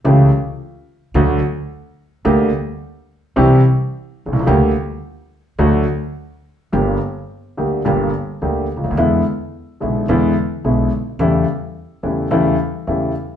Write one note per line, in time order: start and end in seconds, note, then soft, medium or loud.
0.04 0.28 C#2 medium
0.04 0.28 C#3 medium
0.04 0.28 E3 medium
0.04 0.28 A3 medium
0.04 0.28 C#4 medium
0.04 0.28 G4 medium
1.14 1.38 D2 medium
1.14 1.39 D2 medium
1.14 1.39 D3 medium
1.14 1.39 F#3 medium
1.14 1.39 A3 medium
1.14 1.39 F#4 medium
2.25 2.48 D2 medium
2.25 2.48 D2 loud
2.25 2.48 D3 medium
2.25 2.48 G3 medium
2.25 2.49 A#3 medium
2.25 2.49 G4 medium
3.36 3.60 C2 medium
3.36 3.60 C3 medium
3.36 3.59 E3 medium
3.36 3.60 G3 medium
3.36 3.60 C4 medium
3.36 3.60 G4 medium
4.26 4.33 B1 soft
4.33 4.40 C2 medium
4.33 4.39 C2 medium
4.39 4.47 C#2 medium
4.46 4.71 D2 medium
4.46 4.71 D2 loud
4.46 4.70 D3 medium
4.46 4.70 G3 medium
4.46 4.71 A#3 medium
4.46 4.71 G4 medium
5.58 5.83 D2 medium
5.58 5.83 D3 medium
5.58 5.83 F#3 medium
5.58 5.83 A3 medium
5.58 5.83 F#4 medium
6.72 6.97 G1 medium
6.72 6.97 G2 medium
6.72 6.96 D3 medium
6.72 6.97 G3 medium
6.72 6.97 A#3 medium
6.72 6.97 G4 medium
7.57 7.81 D2 soft
7.57 7.82 D2 soft
7.57 7.81 D3 soft
7.57 7.81 G3 soft
7.57 7.81 A#3 soft
7.57 7.81 G4 soft
7.85 8.09 G1 medium
7.85 8.10 G1 medium
7.85 8.09 G2 medium
7.85 8.09 D3 medium
7.85 8.09 G3 medium
7.85 8.09 A#3 medium
7.85 8.09 G4 medium
8.41 8.65 D2 medium
8.41 8.66 D2 medium
8.41 8.66 D3 soft
8.41 8.66 G3 soft
8.41 8.66 A#3 soft
8.41 8.66 G4 soft
8.76 8.83 C#2 soft
8.76 8.84 C#2 soft
8.84 8.90 D2 medium
8.84 8.91 D2 medium
8.91 8.98 D#2 medium
8.91 8.97 D#2 medium
8.97 9.21 E2 medium
8.97 9.21 D3 medium
8.97 9.21 E3 medium
8.97 9.21 G#3 medium
8.97 9.21 B3 medium
8.97 9.21 E4 medium
9.80 10.05 B1 soft
9.80 10.05 B1 medium
9.80 10.05 B2 soft
9.80 10.04 D3 soft
9.80 10.05 G#3 soft
9.80 10.05 B3 soft
9.80 10.05 E4 soft
10.08 10.32 E2 medium
10.08 10.33 E2 medium
10.08 10.32 D3 medium
10.08 10.33 E3 medium
10.08 10.33 G#3 medium
10.08 10.33 B3 medium
10.08 10.33 E4 medium
10.64 10.88 B1 medium
10.64 10.88 B2 medium
10.64 10.88 D3 soft
10.64 10.88 G#3 soft
10.64 10.88 B3 soft
10.64 10.88 E4 medium
11.19 11.43 E2 medium
11.19 11.43 C#3 medium
11.19 11.43 E3 medium
11.19 11.43 G3 medium
11.19 11.44 A3 medium
11.19 11.44 E4 medium
12.03 12.27 E2 medium
12.03 12.27 C#3 soft
12.03 12.27 E3 medium
12.03 12.27 G3 soft
12.03 12.27 A3 soft
12.03 12.27 E4 soft
12.31 12.54 E2 medium
12.31 12.55 E2 medium
12.31 12.54 C#3 medium
12.31 12.55 E3 medium
12.31 12.55 G3 medium
12.31 12.55 A3 medium
12.31 12.55 E4 medium
12.87 13.11 E2 medium
12.87 13.11 C#3 soft
12.87 13.11 E3 medium
12.87 13.11 G3 soft
12.87 13.11 A3 soft
12.87 13.11 E4 soft